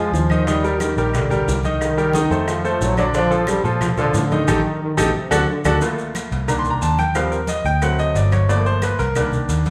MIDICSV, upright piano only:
0, 0, Header, 1, 2, 480
1, 0, Start_track
1, 0, Tempo, 334076
1, 677, Time_signature, 4, 2, 24, 8
1, 13937, End_track
2, 0, Start_track
2, 0, Title_t, "Upright piano"
2, 0, Program_c, 0, 0
2, 0, Note_on_c, 0, 53, 78
2, 0, Note_on_c, 0, 65, 82
2, 0, Note_on_c, 0, 68, 78
2, 345, Note_off_c, 0, 53, 0
2, 350, Note_off_c, 0, 65, 0
2, 353, Note_off_c, 0, 68, 0
2, 438, Note_on_c, 0, 51, 87
2, 442, Note_on_c, 0, 63, 81
2, 447, Note_on_c, 0, 75, 82
2, 634, Note_off_c, 0, 51, 0
2, 637, Note_off_c, 0, 63, 0
2, 640, Note_off_c, 0, 75, 0
2, 675, Note_on_c, 0, 51, 83
2, 682, Note_on_c, 0, 63, 86
2, 685, Note_on_c, 0, 75, 82
2, 872, Note_off_c, 0, 51, 0
2, 877, Note_off_c, 0, 63, 0
2, 878, Note_off_c, 0, 75, 0
2, 916, Note_on_c, 0, 55, 83
2, 922, Note_on_c, 0, 67, 78
2, 929, Note_on_c, 0, 70, 79
2, 1311, Note_off_c, 0, 55, 0
2, 1314, Note_off_c, 0, 67, 0
2, 1318, Note_off_c, 0, 70, 0
2, 1400, Note_on_c, 0, 55, 75
2, 1410, Note_on_c, 0, 67, 82
2, 1412, Note_on_c, 0, 70, 79
2, 1793, Note_off_c, 0, 55, 0
2, 1799, Note_off_c, 0, 67, 0
2, 1800, Note_off_c, 0, 70, 0
2, 1873, Note_on_c, 0, 55, 87
2, 1876, Note_on_c, 0, 67, 77
2, 1881, Note_on_c, 0, 70, 83
2, 2269, Note_off_c, 0, 55, 0
2, 2271, Note_off_c, 0, 67, 0
2, 2274, Note_off_c, 0, 70, 0
2, 2362, Note_on_c, 0, 51, 83
2, 2371, Note_on_c, 0, 63, 77
2, 2374, Note_on_c, 0, 75, 87
2, 2754, Note_off_c, 0, 51, 0
2, 2760, Note_off_c, 0, 63, 0
2, 2762, Note_off_c, 0, 75, 0
2, 2837, Note_on_c, 0, 55, 79
2, 2841, Note_on_c, 0, 67, 79
2, 2845, Note_on_c, 0, 70, 78
2, 3035, Note_off_c, 0, 55, 0
2, 3037, Note_off_c, 0, 67, 0
2, 3039, Note_off_c, 0, 70, 0
2, 3075, Note_on_c, 0, 51, 81
2, 3083, Note_on_c, 0, 63, 88
2, 3085, Note_on_c, 0, 75, 84
2, 3274, Note_off_c, 0, 51, 0
2, 3278, Note_off_c, 0, 63, 0
2, 3279, Note_off_c, 0, 75, 0
2, 3314, Note_on_c, 0, 57, 79
2, 3319, Note_on_c, 0, 69, 75
2, 3321, Note_on_c, 0, 72, 77
2, 3710, Note_off_c, 0, 57, 0
2, 3713, Note_off_c, 0, 69, 0
2, 3714, Note_off_c, 0, 72, 0
2, 3800, Note_on_c, 0, 57, 82
2, 3801, Note_on_c, 0, 69, 79
2, 3809, Note_on_c, 0, 72, 79
2, 4194, Note_off_c, 0, 57, 0
2, 4194, Note_off_c, 0, 69, 0
2, 4199, Note_off_c, 0, 72, 0
2, 4277, Note_on_c, 0, 50, 87
2, 4281, Note_on_c, 0, 62, 81
2, 4290, Note_on_c, 0, 74, 84
2, 4475, Note_off_c, 0, 50, 0
2, 4477, Note_off_c, 0, 62, 0
2, 4483, Note_off_c, 0, 74, 0
2, 4516, Note_on_c, 0, 50, 92
2, 4522, Note_on_c, 0, 62, 89
2, 4526, Note_on_c, 0, 74, 85
2, 4715, Note_off_c, 0, 50, 0
2, 4718, Note_off_c, 0, 62, 0
2, 4721, Note_off_c, 0, 74, 0
2, 4744, Note_on_c, 0, 53, 79
2, 4752, Note_on_c, 0, 69, 84
2, 4753, Note_on_c, 0, 65, 84
2, 5144, Note_off_c, 0, 53, 0
2, 5149, Note_off_c, 0, 65, 0
2, 5149, Note_off_c, 0, 69, 0
2, 5232, Note_on_c, 0, 53, 77
2, 5241, Note_on_c, 0, 65, 79
2, 5244, Note_on_c, 0, 69, 77
2, 5629, Note_off_c, 0, 53, 0
2, 5634, Note_off_c, 0, 65, 0
2, 5636, Note_off_c, 0, 69, 0
2, 5712, Note_on_c, 0, 53, 86
2, 5721, Note_on_c, 0, 65, 85
2, 5723, Note_on_c, 0, 69, 85
2, 6109, Note_off_c, 0, 53, 0
2, 6114, Note_off_c, 0, 65, 0
2, 6115, Note_off_c, 0, 69, 0
2, 6201, Note_on_c, 0, 51, 82
2, 6207, Note_on_c, 0, 75, 87
2, 6208, Note_on_c, 0, 63, 82
2, 6398, Note_off_c, 0, 51, 0
2, 6401, Note_off_c, 0, 75, 0
2, 6402, Note_off_c, 0, 63, 0
2, 6432, Note_on_c, 0, 63, 110
2, 6434, Note_on_c, 0, 67, 99
2, 6436, Note_on_c, 0, 69, 103
2, 6589, Note_off_c, 0, 63, 0
2, 6590, Note_off_c, 0, 67, 0
2, 6591, Note_off_c, 0, 69, 0
2, 7146, Note_on_c, 0, 63, 105
2, 7147, Note_on_c, 0, 67, 104
2, 7148, Note_on_c, 0, 69, 102
2, 7305, Note_off_c, 0, 63, 0
2, 7306, Note_off_c, 0, 67, 0
2, 7306, Note_off_c, 0, 69, 0
2, 7627, Note_on_c, 0, 69, 110
2, 7628, Note_on_c, 0, 62, 108
2, 7633, Note_on_c, 0, 66, 110
2, 7786, Note_off_c, 0, 62, 0
2, 7786, Note_off_c, 0, 69, 0
2, 7789, Note_off_c, 0, 66, 0
2, 8119, Note_on_c, 0, 66, 100
2, 8122, Note_on_c, 0, 62, 97
2, 8122, Note_on_c, 0, 69, 93
2, 8273, Note_off_c, 0, 66, 0
2, 8275, Note_off_c, 0, 62, 0
2, 8275, Note_off_c, 0, 69, 0
2, 8348, Note_on_c, 0, 57, 60
2, 8359, Note_on_c, 0, 58, 52
2, 8361, Note_on_c, 0, 65, 64
2, 9265, Note_off_c, 0, 57, 0
2, 9271, Note_off_c, 0, 58, 0
2, 9272, Note_off_c, 0, 65, 0
2, 9303, Note_on_c, 0, 51, 62
2, 9312, Note_on_c, 0, 58, 53
2, 9315, Note_on_c, 0, 82, 83
2, 9322, Note_on_c, 0, 62, 64
2, 9467, Note_on_c, 0, 84, 89
2, 9472, Note_off_c, 0, 82, 0
2, 9628, Note_off_c, 0, 84, 0
2, 9633, Note_on_c, 0, 82, 89
2, 9791, Note_off_c, 0, 82, 0
2, 9798, Note_on_c, 0, 81, 85
2, 9994, Note_off_c, 0, 51, 0
2, 9999, Note_off_c, 0, 58, 0
2, 10004, Note_off_c, 0, 62, 0
2, 10031, Note_off_c, 0, 81, 0
2, 10040, Note_on_c, 0, 79, 91
2, 10272, Note_off_c, 0, 79, 0
2, 10273, Note_on_c, 0, 53, 61
2, 10282, Note_on_c, 0, 55, 56
2, 10282, Note_on_c, 0, 77, 96
2, 10287, Note_on_c, 0, 60, 63
2, 10511, Note_on_c, 0, 70, 68
2, 10513, Note_off_c, 0, 77, 0
2, 10595, Note_off_c, 0, 53, 0
2, 10599, Note_off_c, 0, 55, 0
2, 10602, Note_off_c, 0, 60, 0
2, 10747, Note_off_c, 0, 70, 0
2, 10756, Note_on_c, 0, 75, 84
2, 10990, Note_off_c, 0, 75, 0
2, 11000, Note_on_c, 0, 79, 102
2, 11232, Note_off_c, 0, 79, 0
2, 11237, Note_on_c, 0, 54, 62
2, 11243, Note_on_c, 0, 57, 53
2, 11244, Note_on_c, 0, 78, 85
2, 11255, Note_on_c, 0, 60, 65
2, 11474, Note_off_c, 0, 78, 0
2, 11486, Note_on_c, 0, 75, 94
2, 11715, Note_off_c, 0, 75, 0
2, 11726, Note_on_c, 0, 74, 75
2, 11955, Note_off_c, 0, 74, 0
2, 11962, Note_on_c, 0, 73, 74
2, 12149, Note_off_c, 0, 54, 0
2, 12152, Note_off_c, 0, 57, 0
2, 12159, Note_off_c, 0, 60, 0
2, 12192, Note_off_c, 0, 73, 0
2, 12192, Note_on_c, 0, 53, 58
2, 12202, Note_on_c, 0, 57, 60
2, 12203, Note_on_c, 0, 74, 97
2, 12215, Note_on_c, 0, 58, 62
2, 12433, Note_off_c, 0, 74, 0
2, 12446, Note_on_c, 0, 72, 89
2, 12675, Note_off_c, 0, 72, 0
2, 12689, Note_on_c, 0, 71, 76
2, 12878, Note_off_c, 0, 53, 0
2, 12884, Note_off_c, 0, 57, 0
2, 12891, Note_off_c, 0, 58, 0
2, 12916, Note_off_c, 0, 71, 0
2, 12916, Note_on_c, 0, 70, 82
2, 13154, Note_on_c, 0, 51, 62
2, 13165, Note_on_c, 0, 58, 54
2, 13168, Note_on_c, 0, 62, 65
2, 13363, Note_off_c, 0, 70, 0
2, 13839, Note_off_c, 0, 51, 0
2, 13845, Note_off_c, 0, 58, 0
2, 13846, Note_off_c, 0, 62, 0
2, 13937, End_track
0, 0, End_of_file